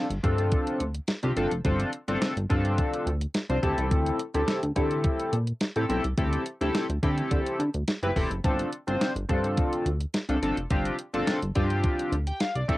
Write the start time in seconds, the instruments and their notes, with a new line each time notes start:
0.10 analog synth bass G1, closed hi-hat
0.23 analog synth bass G2, analog polysynth C4 D4 F4 A4, kick, closed hi-hat
0.38 closed hi-hat
0.52 kick, closed hi-hat
0.67 closed hi-hat
0.80 analog synth bass D2, closed hi-hat
0.95 closed hi-hat
1.08 snare, closed hi-hat
1.23 analog synth bass C2, analog polysynth C4 D4 F4 G4, closed hi-hat
1.36 analog synth bass G1, analog polysynth C4 D4 F4 A4, closed hi-hat
1.51 analog synth bass F1, closed hi-hat
1.65 analog synth bass G1, analog polysynth C4 D4 F4 A4, kick, closed hi-hat
1.80 closed hi-hat
1.93 closed hi-hat
2.08 analog synth bass G1, analog polysynth C4 D4 F4 A4, closed hi-hat
2.22 snare, closed hi-hat
2.37 analog synth bass G1, closed hi-hat
2.50 analog synth bass G2, analog polysynth C4 D4 F4 A4, kick, closed hi-hat
2.65 closed hi-hat
2.78 kick, closed hi-hat
2.93 closed hi-hat
3.06 analog synth bass D2, closed hi-hat
3.21 closed hi-hat
3.34 snare, closed hi-hat
3.49 analog synth bass C2, analog polysynth C4 D4 F4 C5, closed hi-hat
3.62 analog synth bass D2, analog polysynth C4 E4 G4 A4, kick, closed hi-hat
3.78 analog synth bass C2, closed hi-hat
3.91 analog synth bass D2, kick, closed hi-hat
4.06 closed hi-hat
4.19 closed hi-hat
4.34 analog synth bass D2, analog polysynth C4 E4 G4 A4, closed hi-hat
4.48 snare, closed hi-hat
4.63 analog synth bass D2, closed hi-hat
4.76 analog synth bass D3, analog polysynth C4 E4 G4 A4, kick, closed hi-hat
4.91 closed hi-hat
5.04 kick, closed hi-hat
5.20 closed hi-hat
5.33 analog synth bass A#2, closed hi-hat
5.47 closed hi-hat
5.61 snare, closed hi-hat
5.76 analog synth bass A2, analog polysynth C4 E4 G4 A4, closed hi-hat
5.89 analog synth bass B1, analog polysynth C4 E4 G4 A4, closed hi-hat
6.04 analog synth bass C2, closed hi-hat
6.17 analog synth bass D2, analog polysynth C4 E4 G4 A4, kick, closed hi-hat
6.33 closed hi-hat
6.46 closed hi-hat
6.61 analog synth bass D2, analog polysynth C4 E4 G4 A4, closed hi-hat
6.75 snare, closed hi-hat
6.89 analog synth bass D2, closed hi-hat
7.03 analog synth bass D3, analog polysynth C4 E4 G4 A4, kick, closed hi-hat
7.18 closed hi-hat
7.31 analog synth bass D3, kick, closed hi-hat
7.46 closed hi-hat
7.59 analog synth bass D3, closed hi-hat
7.74 analog synth bass D2, closed hi-hat
7.88 snare, closed hi-hat
8.03 analog synth bass F#1, analog polysynth C4 E4 G4 B4, closed hi-hat
8.16 analog synth bass E1, analog polysynth C4 E4 G4 A4, kick, open hi-hat
8.31 analog synth bass F#1, closed hi-hat
8.44 analog synth bass G1, analog polysynth C4 D4 F4 A4, kick, closed hi-hat
8.59 closed hi-hat
8.72 closed hi-hat
8.87 analog synth bass G1, analog polysynth C4 D4 F4 C5, closed hi-hat
9.01 snare, closed hi-hat
9.16 analog synth bass G1, closed hi-hat
9.29 analog synth bass G2, analog polysynth C4 D4 F4 A4, kick, closed hi-hat
9.44 closed hi-hat
9.57 kick, closed hi-hat
9.73 closed hi-hat
9.86 analog synth bass D2, closed hi-hat
10.01 closed hi-hat
10.14 snare, closed hi-hat
10.29 analog synth bass C2, analog polysynth C4 D4 F4 A4, closed hi-hat
10.42 analog synth bass G1, analog polysynth C4 D4 F4 A4, closed hi-hat
10.57 analog synth bass F1, closed hi-hat
10.70 analog synth bass G1, analog polysynth C4 D4 F4 G4, kick, closed hi-hat
10.85 closed hi-hat
10.99 closed hi-hat
11.14 analog synth bass G1, analog polysynth C4 D4 F4 A4, closed hi-hat
11.27 snare, closed hi-hat
11.42 analog synth bass G1, closed hi-hat
11.55 analog synth bass G2, analog polysynth C4 D4 F4 G4, kick, closed hi-hat
11.70 closed hi-hat
11.84 kick, closed hi-hat
11.99 closed hi-hat
12.12 analog synth bass D2, closed hi-hat
12.27 analog polysynth G5, closed hi-hat
12.40 analog polysynth F5, snare, closed hi-hat
12.55 analog synth bass C2, analog polysynth D5, closed hi-hat
12.68 analog synth bass D2, analog polysynth C4 E4 G4 A4, kick, closed hi-hat